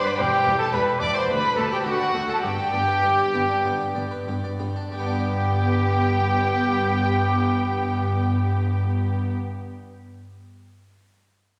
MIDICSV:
0, 0, Header, 1, 8, 480
1, 0, Start_track
1, 0, Key_signature, 1, "major"
1, 0, Tempo, 549451
1, 174, Time_signature, 4, 2, 24, 8
1, 1618, Tempo, 596421
1, 3058, Tempo, 650054
1, 8930, End_track
2, 0, Start_track
2, 0, Title_t, "Violin section"
2, 0, Program_c, 0, 48
2, 52, Note_on_c, 0, 83, 110
2, 163, Note_on_c, 0, 79, 117
2, 172, Note_off_c, 0, 83, 0
2, 522, Note_off_c, 0, 79, 0
2, 534, Note_on_c, 0, 81, 100
2, 639, Note_on_c, 0, 83, 111
2, 646, Note_off_c, 0, 81, 0
2, 709, Note_off_c, 0, 83, 0
2, 873, Note_on_c, 0, 86, 109
2, 997, Note_off_c, 0, 86, 0
2, 1010, Note_on_c, 0, 84, 94
2, 1129, Note_off_c, 0, 84, 0
2, 1131, Note_on_c, 0, 83, 107
2, 1369, Note_off_c, 0, 83, 0
2, 1381, Note_on_c, 0, 81, 99
2, 1497, Note_on_c, 0, 79, 96
2, 1500, Note_off_c, 0, 81, 0
2, 1546, Note_off_c, 0, 79, 0
2, 1625, Note_on_c, 0, 78, 104
2, 1963, Note_off_c, 0, 78, 0
2, 1984, Note_on_c, 0, 81, 97
2, 2083, Note_on_c, 0, 79, 108
2, 2093, Note_off_c, 0, 81, 0
2, 3496, Note_off_c, 0, 79, 0
2, 4012, Note_on_c, 0, 79, 105
2, 7258, Note_off_c, 0, 79, 0
2, 8930, End_track
3, 0, Start_track
3, 0, Title_t, "Trumpet"
3, 0, Program_c, 1, 56
3, 38, Note_on_c, 1, 71, 94
3, 95, Note_off_c, 1, 71, 0
3, 154, Note_on_c, 1, 67, 102
3, 508, Note_off_c, 1, 67, 0
3, 513, Note_on_c, 1, 69, 90
3, 569, Note_off_c, 1, 69, 0
3, 632, Note_on_c, 1, 71, 101
3, 868, Note_on_c, 1, 74, 89
3, 881, Note_off_c, 1, 71, 0
3, 1007, Note_on_c, 1, 72, 81
3, 1020, Note_off_c, 1, 74, 0
3, 1130, Note_on_c, 1, 71, 105
3, 1143, Note_off_c, 1, 72, 0
3, 1357, Note_off_c, 1, 71, 0
3, 1362, Note_on_c, 1, 69, 94
3, 1488, Note_off_c, 1, 69, 0
3, 1496, Note_on_c, 1, 67, 78
3, 1615, Note_off_c, 1, 67, 0
3, 1620, Note_on_c, 1, 66, 84
3, 1859, Note_off_c, 1, 66, 0
3, 1960, Note_on_c, 1, 69, 81
3, 2071, Note_off_c, 1, 69, 0
3, 2076, Note_on_c, 1, 67, 99
3, 3492, Note_off_c, 1, 67, 0
3, 3995, Note_on_c, 1, 67, 91
3, 7240, Note_off_c, 1, 67, 0
3, 8930, End_track
4, 0, Start_track
4, 0, Title_t, "Violin section"
4, 0, Program_c, 2, 48
4, 33, Note_on_c, 2, 71, 100
4, 162, Note_off_c, 2, 71, 0
4, 167, Note_on_c, 2, 67, 96
4, 516, Note_off_c, 2, 67, 0
4, 526, Note_on_c, 2, 69, 88
4, 631, Note_on_c, 2, 71, 95
4, 645, Note_off_c, 2, 69, 0
4, 701, Note_off_c, 2, 71, 0
4, 873, Note_on_c, 2, 74, 100
4, 997, Note_off_c, 2, 74, 0
4, 997, Note_on_c, 2, 72, 81
4, 1122, Note_off_c, 2, 72, 0
4, 1122, Note_on_c, 2, 71, 97
4, 1369, Note_off_c, 2, 71, 0
4, 1373, Note_on_c, 2, 69, 85
4, 1480, Note_on_c, 2, 67, 89
4, 1495, Note_off_c, 2, 69, 0
4, 1609, Note_off_c, 2, 67, 0
4, 1609, Note_on_c, 2, 66, 101
4, 1954, Note_on_c, 2, 69, 88
4, 1962, Note_off_c, 2, 66, 0
4, 2065, Note_on_c, 2, 67, 93
4, 2078, Note_off_c, 2, 69, 0
4, 3515, Note_off_c, 2, 67, 0
4, 3996, Note_on_c, 2, 67, 94
4, 7242, Note_off_c, 2, 67, 0
4, 8930, End_track
5, 0, Start_track
5, 0, Title_t, "Harpsichord"
5, 0, Program_c, 3, 6
5, 0, Note_on_c, 3, 43, 64
5, 42, Note_on_c, 3, 59, 54
5, 149, Note_off_c, 3, 43, 0
5, 164, Note_on_c, 3, 40, 69
5, 167, Note_off_c, 3, 59, 0
5, 285, Note_on_c, 3, 64, 59
5, 380, Note_off_c, 3, 40, 0
5, 396, Note_on_c, 3, 40, 68
5, 399, Note_on_c, 3, 71, 66
5, 412, Note_off_c, 3, 64, 0
5, 519, Note_on_c, 3, 67, 60
5, 528, Note_off_c, 3, 71, 0
5, 614, Note_off_c, 3, 40, 0
5, 636, Note_on_c, 3, 40, 74
5, 639, Note_on_c, 3, 64, 67
5, 647, Note_off_c, 3, 67, 0
5, 765, Note_on_c, 3, 71, 61
5, 767, Note_off_c, 3, 64, 0
5, 855, Note_off_c, 3, 40, 0
5, 885, Note_on_c, 3, 40, 72
5, 885, Note_on_c, 3, 64, 58
5, 891, Note_off_c, 3, 71, 0
5, 1001, Note_on_c, 3, 59, 62
5, 1011, Note_off_c, 3, 64, 0
5, 1103, Note_off_c, 3, 40, 0
5, 1124, Note_off_c, 3, 59, 0
5, 1131, Note_on_c, 3, 38, 69
5, 1255, Note_on_c, 3, 69, 56
5, 1349, Note_off_c, 3, 38, 0
5, 1373, Note_on_c, 3, 38, 69
5, 1375, Note_on_c, 3, 74, 63
5, 1381, Note_off_c, 3, 69, 0
5, 1493, Note_on_c, 3, 69, 60
5, 1503, Note_off_c, 3, 74, 0
5, 1595, Note_off_c, 3, 38, 0
5, 1616, Note_on_c, 3, 38, 69
5, 1616, Note_on_c, 3, 62, 62
5, 1624, Note_off_c, 3, 69, 0
5, 1732, Note_on_c, 3, 74, 58
5, 1738, Note_off_c, 3, 62, 0
5, 1825, Note_off_c, 3, 38, 0
5, 1853, Note_on_c, 3, 69, 51
5, 1855, Note_off_c, 3, 74, 0
5, 1856, Note_on_c, 3, 38, 61
5, 1973, Note_on_c, 3, 62, 51
5, 1974, Note_off_c, 3, 69, 0
5, 2065, Note_off_c, 3, 38, 0
5, 2088, Note_off_c, 3, 62, 0
5, 2092, Note_on_c, 3, 43, 65
5, 2212, Note_on_c, 3, 67, 57
5, 2303, Note_off_c, 3, 43, 0
5, 2324, Note_on_c, 3, 43, 58
5, 2324, Note_on_c, 3, 74, 58
5, 2333, Note_off_c, 3, 67, 0
5, 2443, Note_on_c, 3, 71, 54
5, 2450, Note_off_c, 3, 74, 0
5, 2541, Note_off_c, 3, 43, 0
5, 2567, Note_on_c, 3, 67, 59
5, 2569, Note_on_c, 3, 43, 64
5, 2571, Note_off_c, 3, 71, 0
5, 2683, Note_on_c, 3, 74, 56
5, 2694, Note_off_c, 3, 67, 0
5, 2788, Note_off_c, 3, 43, 0
5, 2811, Note_on_c, 3, 67, 56
5, 2813, Note_on_c, 3, 43, 67
5, 2814, Note_off_c, 3, 74, 0
5, 2940, Note_off_c, 3, 67, 0
5, 2940, Note_on_c, 3, 62, 54
5, 3035, Note_off_c, 3, 43, 0
5, 3062, Note_on_c, 3, 43, 64
5, 3062, Note_on_c, 3, 59, 57
5, 3067, Note_off_c, 3, 62, 0
5, 3174, Note_on_c, 3, 67, 58
5, 3181, Note_off_c, 3, 59, 0
5, 3268, Note_off_c, 3, 43, 0
5, 3287, Note_on_c, 3, 74, 58
5, 3289, Note_on_c, 3, 43, 61
5, 3296, Note_off_c, 3, 67, 0
5, 3405, Note_on_c, 3, 71, 58
5, 3411, Note_off_c, 3, 74, 0
5, 3500, Note_off_c, 3, 43, 0
5, 3528, Note_on_c, 3, 43, 62
5, 3529, Note_off_c, 3, 71, 0
5, 3531, Note_on_c, 3, 67, 52
5, 3647, Note_on_c, 3, 74, 60
5, 3652, Note_off_c, 3, 67, 0
5, 3741, Note_off_c, 3, 43, 0
5, 3762, Note_on_c, 3, 43, 57
5, 3762, Note_on_c, 3, 67, 51
5, 3771, Note_off_c, 3, 74, 0
5, 3884, Note_on_c, 3, 62, 51
5, 3888, Note_off_c, 3, 67, 0
5, 3978, Note_off_c, 3, 43, 0
5, 4003, Note_off_c, 3, 62, 0
5, 4003, Note_on_c, 3, 55, 63
5, 4055, Note_on_c, 3, 59, 68
5, 4107, Note_on_c, 3, 62, 68
5, 4156, Note_on_c, 3, 67, 62
5, 4210, Note_on_c, 3, 74, 66
5, 7248, Note_off_c, 3, 55, 0
5, 7300, Note_off_c, 3, 59, 0
5, 7352, Note_off_c, 3, 62, 0
5, 7402, Note_off_c, 3, 67, 0
5, 7455, Note_off_c, 3, 74, 0
5, 8930, End_track
6, 0, Start_track
6, 0, Title_t, "Viola section"
6, 0, Program_c, 4, 48
6, 166, Note_on_c, 4, 55, 83
6, 236, Note_off_c, 4, 55, 0
6, 402, Note_on_c, 4, 55, 75
6, 472, Note_off_c, 4, 55, 0
6, 641, Note_on_c, 4, 55, 70
6, 710, Note_off_c, 4, 55, 0
6, 879, Note_on_c, 4, 55, 67
6, 948, Note_off_c, 4, 55, 0
6, 1124, Note_on_c, 4, 57, 74
6, 1194, Note_off_c, 4, 57, 0
6, 1367, Note_on_c, 4, 57, 72
6, 1437, Note_off_c, 4, 57, 0
6, 1615, Note_on_c, 4, 57, 59
6, 1680, Note_off_c, 4, 57, 0
6, 1844, Note_on_c, 4, 57, 63
6, 1908, Note_off_c, 4, 57, 0
6, 2089, Note_on_c, 4, 59, 75
6, 2153, Note_off_c, 4, 59, 0
6, 2320, Note_on_c, 4, 59, 67
6, 2384, Note_off_c, 4, 59, 0
6, 2561, Note_on_c, 4, 59, 65
6, 2626, Note_off_c, 4, 59, 0
6, 2811, Note_on_c, 4, 59, 67
6, 2875, Note_off_c, 4, 59, 0
6, 3059, Note_on_c, 4, 59, 70
6, 3118, Note_off_c, 4, 59, 0
6, 3285, Note_on_c, 4, 59, 66
6, 3344, Note_off_c, 4, 59, 0
6, 3518, Note_on_c, 4, 59, 60
6, 3577, Note_off_c, 4, 59, 0
6, 3757, Note_on_c, 4, 59, 59
6, 3816, Note_off_c, 4, 59, 0
6, 3998, Note_on_c, 4, 59, 79
6, 7243, Note_off_c, 4, 59, 0
6, 8930, End_track
7, 0, Start_track
7, 0, Title_t, "Cello section"
7, 0, Program_c, 5, 48
7, 172, Note_on_c, 5, 40, 92
7, 242, Note_off_c, 5, 40, 0
7, 406, Note_on_c, 5, 40, 82
7, 476, Note_off_c, 5, 40, 0
7, 643, Note_on_c, 5, 40, 87
7, 713, Note_off_c, 5, 40, 0
7, 884, Note_on_c, 5, 40, 81
7, 954, Note_off_c, 5, 40, 0
7, 1119, Note_on_c, 5, 38, 81
7, 1189, Note_off_c, 5, 38, 0
7, 1366, Note_on_c, 5, 38, 73
7, 1435, Note_off_c, 5, 38, 0
7, 1612, Note_on_c, 5, 38, 78
7, 1677, Note_off_c, 5, 38, 0
7, 1847, Note_on_c, 5, 38, 69
7, 1912, Note_off_c, 5, 38, 0
7, 2080, Note_on_c, 5, 43, 89
7, 2144, Note_off_c, 5, 43, 0
7, 2318, Note_on_c, 5, 43, 73
7, 2383, Note_off_c, 5, 43, 0
7, 2559, Note_on_c, 5, 43, 74
7, 2623, Note_off_c, 5, 43, 0
7, 2817, Note_on_c, 5, 43, 79
7, 2881, Note_off_c, 5, 43, 0
7, 3064, Note_on_c, 5, 43, 73
7, 3123, Note_off_c, 5, 43, 0
7, 3293, Note_on_c, 5, 43, 75
7, 3353, Note_off_c, 5, 43, 0
7, 3527, Note_on_c, 5, 43, 71
7, 3586, Note_off_c, 5, 43, 0
7, 3760, Note_on_c, 5, 43, 63
7, 3819, Note_off_c, 5, 43, 0
7, 4001, Note_on_c, 5, 43, 90
7, 7246, Note_off_c, 5, 43, 0
7, 8930, End_track
8, 0, Start_track
8, 0, Title_t, "Double bass section"
8, 0, Program_c, 6, 48
8, 174, Note_on_c, 6, 28, 93
8, 244, Note_off_c, 6, 28, 0
8, 399, Note_on_c, 6, 28, 84
8, 469, Note_off_c, 6, 28, 0
8, 645, Note_on_c, 6, 28, 86
8, 715, Note_off_c, 6, 28, 0
8, 879, Note_on_c, 6, 28, 78
8, 949, Note_off_c, 6, 28, 0
8, 1128, Note_on_c, 6, 38, 85
8, 1198, Note_off_c, 6, 38, 0
8, 1371, Note_on_c, 6, 38, 75
8, 1441, Note_off_c, 6, 38, 0
8, 1619, Note_on_c, 6, 38, 72
8, 1684, Note_off_c, 6, 38, 0
8, 1849, Note_on_c, 6, 38, 77
8, 1914, Note_off_c, 6, 38, 0
8, 2078, Note_on_c, 6, 31, 75
8, 2142, Note_off_c, 6, 31, 0
8, 2321, Note_on_c, 6, 31, 73
8, 2385, Note_off_c, 6, 31, 0
8, 2559, Note_on_c, 6, 31, 81
8, 2623, Note_off_c, 6, 31, 0
8, 2811, Note_on_c, 6, 31, 81
8, 2875, Note_off_c, 6, 31, 0
8, 3051, Note_on_c, 6, 31, 87
8, 3111, Note_off_c, 6, 31, 0
8, 3283, Note_on_c, 6, 31, 75
8, 3342, Note_off_c, 6, 31, 0
8, 3519, Note_on_c, 6, 31, 76
8, 3578, Note_off_c, 6, 31, 0
8, 3760, Note_on_c, 6, 31, 65
8, 3820, Note_off_c, 6, 31, 0
8, 3996, Note_on_c, 6, 31, 88
8, 7241, Note_off_c, 6, 31, 0
8, 8930, End_track
0, 0, End_of_file